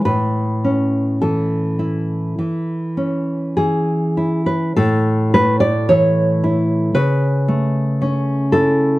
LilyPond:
\new Staff \with { instrumentName = "Nylon-string guitar" } { \time 4/4 \key a \major \tempo 4 = 52 << { b'4 a'2 gis'8. b'16 | a'8 b'16 d''16 cis''4 b'4. a'8 | } \\ { a,8 cis'8 e8 e'8 e8 cis'8 e8 e'8 | a,8 a8 e8 e'8 cis8 a8 cis'8 e'8 | } >> }